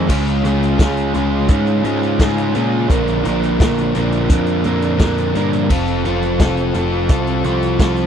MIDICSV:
0, 0, Header, 1, 4, 480
1, 0, Start_track
1, 0, Tempo, 700935
1, 64, Time_signature, 4, 2, 24, 8
1, 5523, End_track
2, 0, Start_track
2, 0, Title_t, "Overdriven electric guitar"
2, 0, Program_c, 0, 29
2, 55, Note_on_c, 0, 49, 88
2, 59, Note_on_c, 0, 61, 94
2, 60, Note_on_c, 0, 56, 86
2, 65, Note_on_c, 0, 65, 81
2, 69, Note_on_c, 0, 68, 99
2, 296, Note_off_c, 0, 49, 0
2, 302, Note_off_c, 0, 56, 0
2, 304, Note_off_c, 0, 61, 0
2, 305, Note_on_c, 0, 49, 91
2, 308, Note_off_c, 0, 65, 0
2, 308, Note_off_c, 0, 68, 0
2, 310, Note_on_c, 0, 56, 93
2, 311, Note_on_c, 0, 65, 90
2, 313, Note_on_c, 0, 61, 100
2, 316, Note_on_c, 0, 68, 99
2, 531, Note_off_c, 0, 56, 0
2, 534, Note_off_c, 0, 49, 0
2, 537, Note_off_c, 0, 61, 0
2, 539, Note_on_c, 0, 56, 95
2, 542, Note_off_c, 0, 68, 0
2, 542, Note_on_c, 0, 49, 88
2, 545, Note_on_c, 0, 61, 86
2, 546, Note_off_c, 0, 65, 0
2, 548, Note_on_c, 0, 65, 84
2, 550, Note_on_c, 0, 68, 87
2, 769, Note_off_c, 0, 61, 0
2, 771, Note_off_c, 0, 49, 0
2, 773, Note_off_c, 0, 56, 0
2, 774, Note_off_c, 0, 68, 0
2, 778, Note_on_c, 0, 61, 113
2, 780, Note_on_c, 0, 49, 98
2, 781, Note_on_c, 0, 56, 96
2, 782, Note_off_c, 0, 65, 0
2, 782, Note_on_c, 0, 68, 96
2, 785, Note_on_c, 0, 65, 105
2, 1007, Note_off_c, 0, 49, 0
2, 1008, Note_off_c, 0, 56, 0
2, 1013, Note_off_c, 0, 61, 0
2, 1016, Note_on_c, 0, 49, 94
2, 1016, Note_on_c, 0, 56, 88
2, 1018, Note_off_c, 0, 68, 0
2, 1020, Note_off_c, 0, 65, 0
2, 1021, Note_on_c, 0, 61, 82
2, 1022, Note_on_c, 0, 65, 87
2, 1026, Note_on_c, 0, 68, 90
2, 1252, Note_off_c, 0, 49, 0
2, 1258, Note_off_c, 0, 56, 0
2, 1260, Note_off_c, 0, 61, 0
2, 1260, Note_on_c, 0, 49, 94
2, 1266, Note_off_c, 0, 68, 0
2, 1267, Note_off_c, 0, 65, 0
2, 1267, Note_on_c, 0, 56, 85
2, 1268, Note_on_c, 0, 61, 91
2, 1269, Note_on_c, 0, 65, 95
2, 1274, Note_on_c, 0, 68, 93
2, 1496, Note_off_c, 0, 49, 0
2, 1500, Note_off_c, 0, 56, 0
2, 1503, Note_off_c, 0, 61, 0
2, 1504, Note_on_c, 0, 49, 109
2, 1507, Note_off_c, 0, 68, 0
2, 1508, Note_on_c, 0, 56, 108
2, 1509, Note_off_c, 0, 65, 0
2, 1511, Note_on_c, 0, 61, 104
2, 1512, Note_on_c, 0, 65, 102
2, 1515, Note_on_c, 0, 68, 104
2, 1726, Note_off_c, 0, 49, 0
2, 1733, Note_off_c, 0, 61, 0
2, 1734, Note_on_c, 0, 49, 84
2, 1735, Note_off_c, 0, 56, 0
2, 1740, Note_off_c, 0, 68, 0
2, 1741, Note_on_c, 0, 61, 87
2, 1743, Note_on_c, 0, 56, 95
2, 1745, Note_off_c, 0, 65, 0
2, 1748, Note_on_c, 0, 65, 83
2, 1749, Note_on_c, 0, 68, 85
2, 1966, Note_off_c, 0, 49, 0
2, 1970, Note_off_c, 0, 61, 0
2, 1971, Note_off_c, 0, 56, 0
2, 1971, Note_on_c, 0, 46, 97
2, 1972, Note_on_c, 0, 50, 94
2, 1973, Note_off_c, 0, 68, 0
2, 1975, Note_on_c, 0, 53, 89
2, 1979, Note_off_c, 0, 65, 0
2, 1980, Note_on_c, 0, 58, 100
2, 1982, Note_on_c, 0, 62, 104
2, 1983, Note_on_c, 0, 70, 97
2, 2197, Note_off_c, 0, 46, 0
2, 2201, Note_off_c, 0, 50, 0
2, 2205, Note_on_c, 0, 46, 82
2, 2206, Note_off_c, 0, 62, 0
2, 2207, Note_off_c, 0, 58, 0
2, 2209, Note_off_c, 0, 53, 0
2, 2209, Note_on_c, 0, 50, 93
2, 2212, Note_off_c, 0, 70, 0
2, 2212, Note_on_c, 0, 53, 87
2, 2214, Note_on_c, 0, 62, 101
2, 2216, Note_on_c, 0, 58, 80
2, 2220, Note_on_c, 0, 70, 105
2, 2443, Note_off_c, 0, 46, 0
2, 2447, Note_off_c, 0, 50, 0
2, 2450, Note_off_c, 0, 62, 0
2, 2451, Note_on_c, 0, 46, 78
2, 2452, Note_off_c, 0, 58, 0
2, 2455, Note_off_c, 0, 70, 0
2, 2455, Note_on_c, 0, 50, 88
2, 2456, Note_off_c, 0, 53, 0
2, 2458, Note_on_c, 0, 62, 93
2, 2459, Note_on_c, 0, 53, 84
2, 2460, Note_on_c, 0, 58, 96
2, 2464, Note_on_c, 0, 70, 92
2, 2689, Note_off_c, 0, 46, 0
2, 2690, Note_off_c, 0, 50, 0
2, 2696, Note_off_c, 0, 53, 0
2, 2697, Note_off_c, 0, 58, 0
2, 2697, Note_on_c, 0, 46, 92
2, 2698, Note_off_c, 0, 62, 0
2, 2698, Note_on_c, 0, 50, 101
2, 2699, Note_on_c, 0, 53, 96
2, 2702, Note_off_c, 0, 70, 0
2, 2706, Note_on_c, 0, 58, 95
2, 2706, Note_on_c, 0, 62, 115
2, 2710, Note_on_c, 0, 70, 102
2, 2931, Note_off_c, 0, 46, 0
2, 2934, Note_off_c, 0, 50, 0
2, 2939, Note_on_c, 0, 46, 88
2, 2940, Note_off_c, 0, 53, 0
2, 2940, Note_off_c, 0, 58, 0
2, 2941, Note_off_c, 0, 62, 0
2, 2942, Note_on_c, 0, 50, 87
2, 2948, Note_off_c, 0, 70, 0
2, 2948, Note_on_c, 0, 53, 82
2, 2948, Note_on_c, 0, 58, 96
2, 2949, Note_on_c, 0, 62, 86
2, 2956, Note_on_c, 0, 70, 87
2, 3170, Note_off_c, 0, 46, 0
2, 3172, Note_off_c, 0, 50, 0
2, 3178, Note_off_c, 0, 53, 0
2, 3178, Note_on_c, 0, 46, 95
2, 3179, Note_off_c, 0, 58, 0
2, 3179, Note_off_c, 0, 62, 0
2, 3180, Note_on_c, 0, 50, 82
2, 3181, Note_off_c, 0, 70, 0
2, 3186, Note_on_c, 0, 53, 89
2, 3187, Note_on_c, 0, 58, 93
2, 3187, Note_on_c, 0, 62, 93
2, 3190, Note_on_c, 0, 70, 99
2, 3396, Note_off_c, 0, 46, 0
2, 3400, Note_off_c, 0, 50, 0
2, 3404, Note_on_c, 0, 46, 100
2, 3406, Note_off_c, 0, 53, 0
2, 3406, Note_off_c, 0, 58, 0
2, 3406, Note_off_c, 0, 62, 0
2, 3408, Note_on_c, 0, 50, 96
2, 3410, Note_off_c, 0, 70, 0
2, 3414, Note_on_c, 0, 53, 100
2, 3414, Note_on_c, 0, 62, 99
2, 3415, Note_on_c, 0, 58, 100
2, 3418, Note_on_c, 0, 70, 102
2, 3646, Note_off_c, 0, 46, 0
2, 3649, Note_off_c, 0, 53, 0
2, 3650, Note_off_c, 0, 50, 0
2, 3655, Note_off_c, 0, 58, 0
2, 3655, Note_on_c, 0, 46, 78
2, 3657, Note_off_c, 0, 70, 0
2, 3657, Note_on_c, 0, 53, 81
2, 3658, Note_on_c, 0, 50, 81
2, 3659, Note_off_c, 0, 62, 0
2, 3664, Note_on_c, 0, 58, 82
2, 3665, Note_on_c, 0, 70, 83
2, 3668, Note_on_c, 0, 62, 78
2, 3885, Note_off_c, 0, 46, 0
2, 3887, Note_off_c, 0, 50, 0
2, 3887, Note_off_c, 0, 53, 0
2, 3890, Note_off_c, 0, 58, 0
2, 3891, Note_off_c, 0, 70, 0
2, 3892, Note_off_c, 0, 62, 0
2, 3899, Note_on_c, 0, 53, 88
2, 3902, Note_on_c, 0, 65, 83
2, 3905, Note_on_c, 0, 60, 88
2, 3907, Note_on_c, 0, 69, 95
2, 4136, Note_off_c, 0, 53, 0
2, 4141, Note_off_c, 0, 69, 0
2, 4142, Note_off_c, 0, 65, 0
2, 4144, Note_off_c, 0, 60, 0
2, 4144, Note_on_c, 0, 53, 89
2, 4147, Note_on_c, 0, 60, 91
2, 4150, Note_on_c, 0, 69, 102
2, 4151, Note_on_c, 0, 65, 90
2, 4373, Note_off_c, 0, 53, 0
2, 4377, Note_off_c, 0, 65, 0
2, 4379, Note_off_c, 0, 69, 0
2, 4381, Note_on_c, 0, 53, 84
2, 4383, Note_off_c, 0, 60, 0
2, 4386, Note_on_c, 0, 60, 95
2, 4386, Note_on_c, 0, 65, 84
2, 4387, Note_on_c, 0, 69, 103
2, 4619, Note_off_c, 0, 53, 0
2, 4623, Note_off_c, 0, 65, 0
2, 4626, Note_off_c, 0, 69, 0
2, 4627, Note_off_c, 0, 60, 0
2, 4628, Note_on_c, 0, 53, 94
2, 4630, Note_on_c, 0, 60, 103
2, 4631, Note_on_c, 0, 65, 110
2, 4635, Note_on_c, 0, 69, 109
2, 4856, Note_off_c, 0, 53, 0
2, 4859, Note_off_c, 0, 60, 0
2, 4861, Note_off_c, 0, 65, 0
2, 4863, Note_off_c, 0, 69, 0
2, 4865, Note_on_c, 0, 53, 84
2, 4867, Note_on_c, 0, 60, 87
2, 4870, Note_on_c, 0, 65, 89
2, 4871, Note_on_c, 0, 69, 101
2, 5092, Note_off_c, 0, 60, 0
2, 5093, Note_off_c, 0, 53, 0
2, 5095, Note_off_c, 0, 65, 0
2, 5096, Note_off_c, 0, 69, 0
2, 5100, Note_on_c, 0, 60, 89
2, 5101, Note_on_c, 0, 53, 84
2, 5103, Note_on_c, 0, 65, 93
2, 5104, Note_on_c, 0, 69, 96
2, 5335, Note_off_c, 0, 53, 0
2, 5335, Note_off_c, 0, 60, 0
2, 5339, Note_off_c, 0, 65, 0
2, 5340, Note_off_c, 0, 69, 0
2, 5343, Note_on_c, 0, 53, 98
2, 5343, Note_on_c, 0, 60, 98
2, 5347, Note_on_c, 0, 65, 105
2, 5348, Note_on_c, 0, 69, 116
2, 5523, Note_off_c, 0, 53, 0
2, 5523, Note_off_c, 0, 60, 0
2, 5523, Note_off_c, 0, 65, 0
2, 5523, Note_off_c, 0, 69, 0
2, 5523, End_track
3, 0, Start_track
3, 0, Title_t, "Picked electric bass"
3, 0, Program_c, 1, 34
3, 66, Note_on_c, 1, 37, 91
3, 294, Note_off_c, 1, 37, 0
3, 302, Note_on_c, 1, 37, 91
3, 531, Note_off_c, 1, 37, 0
3, 542, Note_on_c, 1, 37, 113
3, 772, Note_off_c, 1, 37, 0
3, 789, Note_on_c, 1, 37, 90
3, 1016, Note_off_c, 1, 37, 0
3, 1021, Note_on_c, 1, 44, 101
3, 1252, Note_off_c, 1, 44, 0
3, 1263, Note_on_c, 1, 44, 89
3, 1493, Note_off_c, 1, 44, 0
3, 1503, Note_on_c, 1, 44, 89
3, 1733, Note_off_c, 1, 44, 0
3, 1753, Note_on_c, 1, 46, 81
3, 1978, Note_off_c, 1, 46, 0
3, 1986, Note_on_c, 1, 34, 87
3, 2214, Note_off_c, 1, 34, 0
3, 2226, Note_on_c, 1, 34, 80
3, 2455, Note_off_c, 1, 34, 0
3, 2466, Note_on_c, 1, 34, 94
3, 2695, Note_off_c, 1, 34, 0
3, 2716, Note_on_c, 1, 34, 89
3, 2939, Note_off_c, 1, 34, 0
3, 2945, Note_on_c, 1, 41, 94
3, 3174, Note_off_c, 1, 41, 0
3, 3190, Note_on_c, 1, 41, 82
3, 3416, Note_off_c, 1, 41, 0
3, 3421, Note_on_c, 1, 41, 80
3, 3651, Note_off_c, 1, 41, 0
3, 3671, Note_on_c, 1, 43, 97
3, 3896, Note_off_c, 1, 43, 0
3, 3906, Note_on_c, 1, 29, 86
3, 4134, Note_off_c, 1, 29, 0
3, 4153, Note_on_c, 1, 29, 81
3, 4377, Note_off_c, 1, 29, 0
3, 4383, Note_on_c, 1, 29, 108
3, 4612, Note_off_c, 1, 29, 0
3, 4623, Note_on_c, 1, 29, 93
3, 4852, Note_off_c, 1, 29, 0
3, 4859, Note_on_c, 1, 36, 101
3, 5089, Note_off_c, 1, 36, 0
3, 5102, Note_on_c, 1, 36, 91
3, 5330, Note_off_c, 1, 36, 0
3, 5337, Note_on_c, 1, 36, 87
3, 5523, Note_off_c, 1, 36, 0
3, 5523, End_track
4, 0, Start_track
4, 0, Title_t, "Drums"
4, 62, Note_on_c, 9, 36, 89
4, 65, Note_on_c, 9, 49, 98
4, 131, Note_off_c, 9, 36, 0
4, 134, Note_off_c, 9, 49, 0
4, 189, Note_on_c, 9, 42, 43
4, 257, Note_off_c, 9, 42, 0
4, 306, Note_on_c, 9, 42, 81
4, 375, Note_off_c, 9, 42, 0
4, 430, Note_on_c, 9, 42, 41
4, 498, Note_off_c, 9, 42, 0
4, 543, Note_on_c, 9, 36, 117
4, 544, Note_on_c, 9, 42, 110
4, 551, Note_on_c, 9, 38, 123
4, 611, Note_off_c, 9, 36, 0
4, 613, Note_off_c, 9, 42, 0
4, 619, Note_off_c, 9, 38, 0
4, 665, Note_on_c, 9, 42, 44
4, 733, Note_off_c, 9, 42, 0
4, 783, Note_on_c, 9, 42, 67
4, 852, Note_off_c, 9, 42, 0
4, 1016, Note_on_c, 9, 42, 100
4, 1020, Note_on_c, 9, 36, 121
4, 1084, Note_off_c, 9, 42, 0
4, 1089, Note_off_c, 9, 36, 0
4, 1142, Note_on_c, 9, 42, 46
4, 1211, Note_off_c, 9, 42, 0
4, 1264, Note_on_c, 9, 42, 58
4, 1332, Note_off_c, 9, 42, 0
4, 1389, Note_on_c, 9, 42, 41
4, 1457, Note_off_c, 9, 42, 0
4, 1504, Note_on_c, 9, 36, 116
4, 1504, Note_on_c, 9, 42, 100
4, 1511, Note_on_c, 9, 38, 121
4, 1573, Note_off_c, 9, 36, 0
4, 1573, Note_off_c, 9, 42, 0
4, 1579, Note_off_c, 9, 38, 0
4, 1629, Note_on_c, 9, 42, 51
4, 1698, Note_off_c, 9, 42, 0
4, 1744, Note_on_c, 9, 42, 67
4, 1812, Note_off_c, 9, 42, 0
4, 1984, Note_on_c, 9, 36, 114
4, 1987, Note_on_c, 9, 42, 92
4, 2053, Note_off_c, 9, 36, 0
4, 2055, Note_off_c, 9, 42, 0
4, 2106, Note_on_c, 9, 42, 46
4, 2175, Note_off_c, 9, 42, 0
4, 2225, Note_on_c, 9, 42, 76
4, 2294, Note_off_c, 9, 42, 0
4, 2349, Note_on_c, 9, 42, 43
4, 2418, Note_off_c, 9, 42, 0
4, 2466, Note_on_c, 9, 36, 126
4, 2470, Note_on_c, 9, 42, 107
4, 2476, Note_on_c, 9, 38, 126
4, 2534, Note_off_c, 9, 36, 0
4, 2538, Note_off_c, 9, 42, 0
4, 2544, Note_off_c, 9, 38, 0
4, 2590, Note_on_c, 9, 42, 44
4, 2658, Note_off_c, 9, 42, 0
4, 2703, Note_on_c, 9, 42, 81
4, 2771, Note_off_c, 9, 42, 0
4, 2823, Note_on_c, 9, 42, 50
4, 2891, Note_off_c, 9, 42, 0
4, 2942, Note_on_c, 9, 42, 121
4, 2943, Note_on_c, 9, 36, 122
4, 3010, Note_off_c, 9, 42, 0
4, 3012, Note_off_c, 9, 36, 0
4, 3058, Note_on_c, 9, 42, 49
4, 3127, Note_off_c, 9, 42, 0
4, 3177, Note_on_c, 9, 42, 72
4, 3246, Note_off_c, 9, 42, 0
4, 3301, Note_on_c, 9, 42, 44
4, 3370, Note_off_c, 9, 42, 0
4, 3420, Note_on_c, 9, 42, 114
4, 3422, Note_on_c, 9, 36, 116
4, 3426, Note_on_c, 9, 38, 117
4, 3488, Note_off_c, 9, 42, 0
4, 3491, Note_off_c, 9, 36, 0
4, 3495, Note_off_c, 9, 38, 0
4, 3546, Note_on_c, 9, 42, 55
4, 3614, Note_off_c, 9, 42, 0
4, 3665, Note_on_c, 9, 42, 78
4, 3733, Note_off_c, 9, 42, 0
4, 3786, Note_on_c, 9, 42, 48
4, 3855, Note_off_c, 9, 42, 0
4, 3904, Note_on_c, 9, 36, 93
4, 3905, Note_on_c, 9, 49, 90
4, 3972, Note_off_c, 9, 36, 0
4, 3974, Note_off_c, 9, 49, 0
4, 4023, Note_on_c, 9, 42, 42
4, 4092, Note_off_c, 9, 42, 0
4, 4142, Note_on_c, 9, 42, 71
4, 4211, Note_off_c, 9, 42, 0
4, 4263, Note_on_c, 9, 42, 45
4, 4331, Note_off_c, 9, 42, 0
4, 4381, Note_on_c, 9, 36, 120
4, 4381, Note_on_c, 9, 42, 107
4, 4388, Note_on_c, 9, 38, 115
4, 4449, Note_off_c, 9, 36, 0
4, 4450, Note_off_c, 9, 42, 0
4, 4456, Note_off_c, 9, 38, 0
4, 4501, Note_on_c, 9, 42, 46
4, 4569, Note_off_c, 9, 42, 0
4, 4618, Note_on_c, 9, 42, 68
4, 4686, Note_off_c, 9, 42, 0
4, 4855, Note_on_c, 9, 42, 109
4, 4859, Note_on_c, 9, 36, 122
4, 4923, Note_off_c, 9, 42, 0
4, 4927, Note_off_c, 9, 36, 0
4, 4979, Note_on_c, 9, 42, 43
4, 5047, Note_off_c, 9, 42, 0
4, 5096, Note_on_c, 9, 42, 67
4, 5165, Note_off_c, 9, 42, 0
4, 5222, Note_on_c, 9, 42, 44
4, 5290, Note_off_c, 9, 42, 0
4, 5336, Note_on_c, 9, 42, 99
4, 5338, Note_on_c, 9, 36, 116
4, 5342, Note_on_c, 9, 38, 110
4, 5405, Note_off_c, 9, 42, 0
4, 5406, Note_off_c, 9, 36, 0
4, 5411, Note_off_c, 9, 38, 0
4, 5454, Note_on_c, 9, 42, 45
4, 5522, Note_off_c, 9, 42, 0
4, 5523, End_track
0, 0, End_of_file